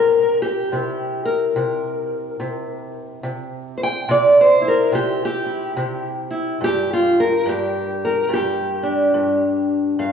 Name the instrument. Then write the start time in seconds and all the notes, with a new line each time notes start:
steel-string acoustic guitar
Already playing: C3 A#4
0.42 G4
0.72 C3 E4
1.25 A#4
1.56 C3
2.40 C3
3.23 C3
3.78 C5
3.83 G5
4.09 C3 D5
4.41 C5
4.62 E4
4.68 A#4
4.92 C3 G4
5.25 G4
5.46 E4
5.77 C3
6.31 E4
6.61 G2 G4
6.93 F4
7.20 A#4
7.46 G2 G4
8.05 A#4
8.29 G2
8.33 G4
8.83 D4
9.14 G2
9.99 G2 F5